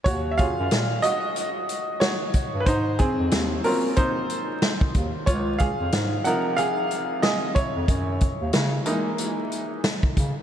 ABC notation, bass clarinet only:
X:1
M:4/4
L:1/16
Q:"Swing 16ths" 1/4=92
K:Ebm
V:1 name="Bass clarinet" clef=bass
E,,3 G,, B,,2 z8 z =G,, | A,,3 F,, E,,2 z8 E,, z | D,,3 F,, A,,2 z8 z F,, | G,,3 E,, D,2 z8 D, z |]